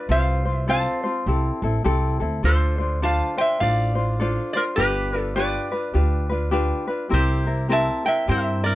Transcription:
0.00 resonator guitar played with a steel bar D5
0.09 upright bass C2, ukulele C4 F4 A4 C5, resonator guitar played with a steel bar C5 F5
0.45 ukulele C4 F4 C5
0.54 resonator guitar played with a steel bar E5
0.68 ukulele C4 F4 A4 C5, resonator guitar played with a steel bar F5 A5
1.04 ukulele C4 F4 C5
1.26 upright bass C2, ukulele C4 E4 G4 A4
1.62 upright bass A1, ukulele C4 E4 A4
1.84 upright bass C2, ukulele C4 E4 G4 A4
2.20 upright bass D2, ukulele C4 E4 A4
2.43 upright bass D2, ukulele D4 F4 A4 C5, resonator guitar played with a steel bar A4 C5
2.78 ukulele D4 F4 C5
3.02 ukulele D4 F4 A4 C5, resonator guitar played with a steel bar F5 A5
3.37 ukulele D4 F4 C5, resonator guitar played with a steel bar E5 G5
3.60 upright bass A1, ukulele D4 F4 A4 C5, resonator guitar played with a steel bar D5 F5
3.95 ukulele D4 F4 C5
4.20 ukulele D4 F4 A4 C5
4.53 ukulele D4 F4 C5, resonator guitar played with a steel bar A#4 D5
4.76 upright bass G1, ukulele D4 F4 G4 B4, resonator guitar played with a steel bar G4 B4
5.13 ukulele D4 F4 B4
5.19 resonator guitar played with a steel bar A4
5.36 ukulele D4 F4 G4 B4, resonator guitar played with a steel bar B4 D5
5.72 ukulele D4 F4 B4
5.94 upright bass D2, ukulele D4 F4 G4 B4
6.29 ukulele D4 F4 B4
6.51 ukulele D4 F4 G4 B4
6.87 ukulele D4 F4 B4
7.09 upright bass C2, ukulele C4 E4 G4 A#4
7.14 resonator guitar played with a steel bar G4 C5
7.47 ukulele C4 E4 A#4
7.69 ukulele C4 E4 G4 A#4, resonator guitar played with a steel bar A5
7.73 resonator guitar played with a steel bar E5
8.05 ukulele C4 E4 A#4, resonator guitar played with a steel bar E5 G5
8.28 upright bass G2, ukulele C4 E4 G4 A#4, resonator guitar played with a steel bar C5 E5
8.63 ukulele C4 E4 A#4, resonator guitar played with a steel bar A#4 D5

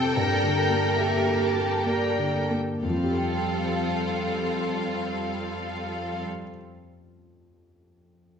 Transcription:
Already playing: grand piano F2 C3 C4 G4 A4, harp F2 C4 F4 G4 C5 A5, viola section C4 G4, cello section A4, violin section A4 G5
0.17 grand piano G2, harp G2, viola section A#3 G4, cello section A#4, violin section G5
0.43 grand piano D3
0.57 harp A#3
0.70 grand piano A#3
0.98 harp G4, grand piano G4, violin section E5
1.27 grand piano G4
1.42 violin section A5
1.56 grand piano G4
1.86 grand piano A#3, cello section A#4, harp D5, violin section G5
2.18 grand piano D3
2.35 harp A4
2.51 grand piano A#3
2.83 harp F2, grand piano F2, cello section F2, viola section G3 C4, violin section F4 A4 F5
2.90 harp F3, grand piano F3
2.97 harp C4, grand piano C4
3.03 harp G4, grand piano G4
3.11 harp A4, grand piano A4
3.17 harp G5, grand piano G5

